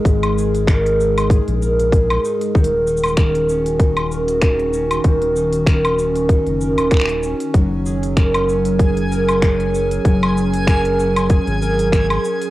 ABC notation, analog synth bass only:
X:1
M:4/4
L:1/16
Q:"Swing 16ths" 1/4=96
K:D#phr
V:1 name="Analog synth bass" clef=bass
G,,,8- G,,, A,,,4- A,,, z2 | D,,,16 | D,,,8- D,,, F,,,2 D,,,4 z | F,,,16 |
F,,,8- F,,, G,,,4- G,,, z2 |]